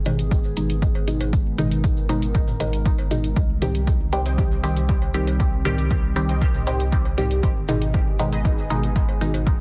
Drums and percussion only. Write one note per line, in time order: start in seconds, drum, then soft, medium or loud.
0.06 closed hi-hat medium
0.06 cowbell loud
0.06 cabasa loud
0.19 closed hi-hat medium
0.19 cabasa soft
0.31 kick loud
0.31 closed hi-hat soft
0.31 cabasa medium
0.44 cabasa soft
0.57 closed hi-hat medium
0.57 cabasa loud
0.69 closed hi-hat medium
0.69 cabasa soft
0.82 kick loud
0.82 closed hi-hat soft
0.82 cabasa medium
0.95 cowbell medium
1.07 closed hi-hat medium
1.07 cabasa loud
1.20 closed hi-hat medium
1.20 cowbell medium
1.20 cabasa soft
1.33 kick loud
1.33 closed hi-hat soft
1.33 cabasa medium
1.58 closed hi-hat medium
1.58 high tom medium
1.58 cabasa medium
1.71 closed hi-hat soft
1.71 cabasa soft
1.84 kick loud
1.84 closed hi-hat soft
1.84 cabasa medium
1.97 cabasa soft
2.09 closed hi-hat medium
2.09 cowbell medium
2.09 cabasa medium
2.22 closed hi-hat soft
2.22 cabasa soft
2.35 kick loud
2.35 closed hi-hat soft
2.35 cabasa medium
2.48 high tom medium
2.48 cabasa soft
2.60 closed hi-hat medium
2.60 high tom medium
2.60 cowbell medium
2.60 cabasa loud
2.73 closed hi-hat soft
2.73 cabasa soft
2.86 kick loud
2.86 closed hi-hat soft
2.86 cabasa medium
2.98 cowbell medium
2.98 cabasa soft
3.11 closed hi-hat medium
3.11 high tom medium
3.11 cabasa loud
3.24 closed hi-hat soft
3.24 cabasa soft
3.36 kick loud
3.36 closed hi-hat soft
3.36 cabasa medium
3.62 closed hi-hat medium
3.62 high tom medium
3.62 cabasa medium
3.75 closed hi-hat soft
3.75 cabasa soft
3.87 kick loud
3.87 closed hi-hat soft
3.87 cabasa medium
4.12 closed hi-hat medium
4.12 cowbell medium
4.12 cabasa medium
4.26 closed hi-hat soft
4.26 cabasa soft
4.38 kick loud
4.38 closed hi-hat soft
4.38 cabasa medium
4.52 cabasa soft
4.64 closed hi-hat medium
4.64 cabasa medium
4.77 closed hi-hat soft
4.77 cabasa soft
4.89 kick loud
4.89 closed hi-hat soft
4.89 cabasa soft
5.02 cowbell medium
5.14 closed hi-hat medium
5.14 cabasa medium
5.27 closed hi-hat soft
5.27 cowbell medium
5.27 cabasa soft
5.40 kick loud
5.40 closed hi-hat soft
5.40 cabasa soft
5.65 closed hi-hat medium
5.65 high tom medium
5.65 cabasa medium
5.78 closed hi-hat soft
5.78 cabasa soft
5.90 kick loud
5.90 closed hi-hat soft
5.90 cabasa medium
6.16 closed hi-hat medium
6.16 cowbell medium
6.16 cabasa medium
6.28 closed hi-hat soft
6.28 cabasa soft
6.41 kick loud
6.41 closed hi-hat soft
6.41 cabasa medium
6.54 high tom medium
6.54 cabasa soft
6.67 closed hi-hat medium
6.67 high tom medium
6.67 cowbell medium
6.67 cabasa medium
6.80 closed hi-hat soft
6.80 cabasa soft
6.92 kick loud
6.92 closed hi-hat soft
6.92 cabasa medium
7.05 cowbell medium
7.18 closed hi-hat medium
7.18 high tom medium
7.18 cabasa medium
7.31 closed hi-hat soft
7.31 cabasa soft
7.43 kick loud
7.43 closed hi-hat soft
7.43 cabasa soft
7.68 closed hi-hat medium
7.68 high tom medium
7.68 cabasa loud
7.81 closed hi-hat soft
7.81 cabasa soft
7.94 kick loud
7.94 closed hi-hat soft
7.94 cabasa medium
8.19 closed hi-hat medium
8.19 cowbell medium
8.19 cabasa medium
8.32 closed hi-hat soft
8.32 cabasa soft
8.45 kick loud
8.45 closed hi-hat soft
8.45 cabasa medium
8.58 cabasa soft
8.70 closed hi-hat medium
8.70 cabasa medium
8.83 closed hi-hat soft
8.83 cabasa soft
8.96 kick loud
8.96 closed hi-hat soft
8.96 cabasa soft
9.09 cowbell medium
9.21 closed hi-hat medium
9.21 cabasa medium
9.34 closed hi-hat soft
9.34 cowbell medium
9.34 cabasa soft
9.47 kick loud
9.47 closed hi-hat soft
9.47 cabasa soft